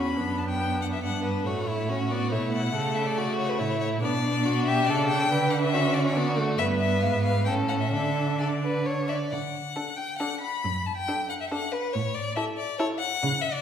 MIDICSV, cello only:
0, 0, Header, 1, 2, 480
1, 0, Start_track
1, 0, Key_signature, 2, "major"
1, 0, Tempo, 427655
1, 201, Time_signature, 3, 2, 24, 8
1, 7881, Tempo, 459770
1, 10281, Tempo, 437318
1, 13161, Tempo, 425532
1, 15047, End_track
2, 0, Start_track
2, 0, Title_t, "Cello"
2, 0, Program_c, 0, 42
2, 0, Note_on_c, 0, 40, 42
2, 200, Note_on_c, 0, 42, 43
2, 217, Note_off_c, 0, 40, 0
2, 1159, Note_on_c, 0, 43, 40
2, 1176, Note_off_c, 0, 42, 0
2, 1637, Note_off_c, 0, 43, 0
2, 1644, Note_on_c, 0, 45, 46
2, 2605, Note_on_c, 0, 47, 42
2, 2621, Note_off_c, 0, 45, 0
2, 3082, Note_off_c, 0, 47, 0
2, 3088, Note_on_c, 0, 49, 50
2, 4035, Note_on_c, 0, 45, 51
2, 4052, Note_off_c, 0, 49, 0
2, 4507, Note_off_c, 0, 45, 0
2, 4514, Note_on_c, 0, 47, 54
2, 5485, Note_on_c, 0, 49, 60
2, 5502, Note_off_c, 0, 47, 0
2, 5953, Note_off_c, 0, 49, 0
2, 5960, Note_on_c, 0, 50, 64
2, 7376, Note_off_c, 0, 50, 0
2, 7407, Note_on_c, 0, 43, 57
2, 7884, Note_on_c, 0, 44, 52
2, 7900, Note_off_c, 0, 43, 0
2, 8353, Note_on_c, 0, 45, 51
2, 8368, Note_off_c, 0, 44, 0
2, 8832, Note_off_c, 0, 45, 0
2, 8839, Note_on_c, 0, 50, 49
2, 10045, Note_off_c, 0, 50, 0
2, 10284, Note_on_c, 0, 50, 59
2, 10665, Note_off_c, 0, 50, 0
2, 11736, Note_on_c, 0, 42, 66
2, 12113, Note_off_c, 0, 42, 0
2, 13165, Note_on_c, 0, 45, 67
2, 13542, Note_off_c, 0, 45, 0
2, 14611, Note_on_c, 0, 49, 75
2, 14988, Note_off_c, 0, 49, 0
2, 15047, End_track
0, 0, End_of_file